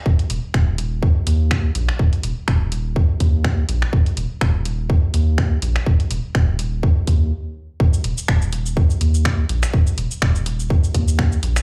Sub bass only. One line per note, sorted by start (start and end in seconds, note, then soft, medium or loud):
0.06 0.14 D#1 loud
0.30 0.38 D#1 medium
0.54 1.08 D#1 medium
1.27 1.69 D#2 loud
1.75 1.91 A#1 medium
1.99 2.08 D#1 loud
2.24 2.32 D#1 medium
2.48 3.02 D#1 medium
3.20 3.62 D#2 loud
3.69 3.85 A#1 medium
3.93 4.01 D#1 loud
4.17 4.26 D#1 medium
4.41 4.95 D#1 medium
5.14 5.56 D#2 medium
5.62 5.79 A#1 medium
5.86 5.95 D#1 loud
6.11 6.19 D#1 medium
6.35 6.89 D#1 medium
7.07 7.32 D#2 loud
7.80 7.88 D#1 loud
8.04 8.13 D#1 medium
8.28 8.82 D#1 medium
9.01 9.43 D#2 loud
9.49 9.66 A#1 medium
9.74 9.82 D#1 loud
9.98 10.06 D#1 medium
10.22 10.76 D#1 medium
10.94 11.37 D#2 loud
11.43 11.59 A#1 medium